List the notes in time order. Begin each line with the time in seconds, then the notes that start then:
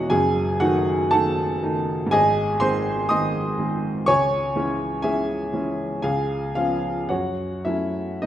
Already playing: E1 E2 E3 G#3 C#4 D#4 E4 F#4 C#5 D#5 E5 F#5
0.10 F#1 F#2 G#4 G#5
0.60 D#3 A3 D#4 F#4 F#5
1.11 D#3 A3 D#4 A4 F#5 A5
1.63 D#3 A3 D#4
2.07 G#2
2.11 G#1 G#4 D#5 G#5
2.60 D#3 G#3 C4 C5 C6
3.09 D#3 G#3 C4 D#5 C6 D#6
3.59 D#3 G#3 C4
4.06 C#2 C#5 G#5 C#6
4.56 E3 G#3 C#4
5.02 E3 G#3 C#4 G#4 E5 G#5
5.53 E3 G#3 C#4
6.02 C#2 G#4 F5 G#5
6.55 F3 B3 C#4 F4 F5
7.09 F#2 F#4 C#5 F#5
7.65 F#3 A3 C#4 E4 E5
8.22 G#1 G#2 D#4 C5 D#5